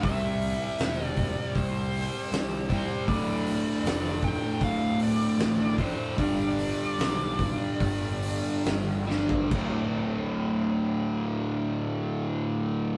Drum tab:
CC |----------------|----------------|----------------|x---------------|
HH |o-o-o-o-o-o-o-o-|o-o-o-o-o-o-o-o-|o-o-o-o-o-o-o---|----------------|
SD |----o-------o---|----o-------o---|----o-------o-o-|----------------|
FT |----------------|----------------|---------------o|----------------|
BD |o-----o-o-----o-|o-----o-o-----o-|o-----o-o-------|o---------------|